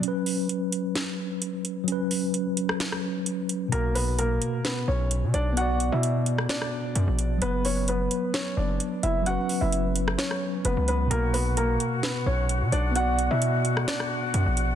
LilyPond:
<<
  \new Staff \with { instrumentName = "Flute section" } { \time 4/4 \key b \minor \tempo 4 = 130 r1 | r1 | r1 | r1 |
r1 | r1 | <fis' fis''>1~ | <fis' fis''>1 | }
  \new Staff \with { instrumentName = "Felt piano" } { \time 4/4 \key b \minor r1 | r1 | <ais ais'>8 <b b'>8 <ais ais'>4 <b b'>8 <cis' cis''>4 <d' d''>8 | <fis' fis''>8. <e' e''>4~ <e' e''>16 <d' d''>2 |
<b b'>8 <cis' cis''>8 <b b'>4 <cis' cis''>8 <d' d''>4 <e' e''>8 | <fis' fis''>8. <e' e''>4~ <e' e''>16 <cis' cis''>4 <b b'>8 <b b'>8 | <ais ais'>8 <b b'>8 <ais ais'>4 <b b'>8 <cis' cis''>4 <d' d''>8 | <fis' fis''>8. <e' e''>4~ <e' e''>16 <d' d''>2 | }
  \new Staff \with { instrumentName = "Tine electric piano" } { \time 4/4 \key b \minor <fis cis' b'>1 | <fis cis' b'>1 | <b, fis'>1 | <b fis' d''>1 |
<fis b b'>1 | <fis cis' b'>1 | <b, fis'>1 | <b fis' d''>1 | }
  \new Staff \with { instrumentName = "808-style bass" } { \clef bass \time 4/4 \key b \minor r1 | r1 | b,,4. r4 b,,8. b,16 b,,8~ | b,,8. b,4~ b,16 r4 fis,16 ais,,8. |
fis,,4. r4 fis,,8 r8 fis,,8~ | fis,,16 r8 fis,,4~ fis,,16 r4 fis,,16 cis,8. | b,,4. r4 b,,8. b,16 b,,8~ | b,,8. b,4~ b,16 r4 fis,16 ais,,8. | }
  \new DrumStaff \with { instrumentName = "Drums" } \drummode { \time 4/4 hh8 hho8 hh8 hh8 <hh sn>4 hh8 hh8 | hh8 hho8 hh8 hh16 ss16 <hh sn>16 ss8. hh8 hh8 | hh8 hho8 hh8 hh8 <hh sn>4 hh8 hh8 | hh8 hh8 hh8 hh16 ss16 <hh sn>16 ss8. hh8 hh8 |
hh8 hho8 hh8 hh8 <hh sn>4 hh8 hh8 | hh8 hho8 hh8 hh16 ss16 <hh sn>16 ss8. hh8 hh8 | hh8 hho8 hh8 hh8 <hh sn>4 hh8 hh8 | hh8 hh8 hh8 hh16 ss16 <hh sn>16 ss8. hh8 hh8 | }
>>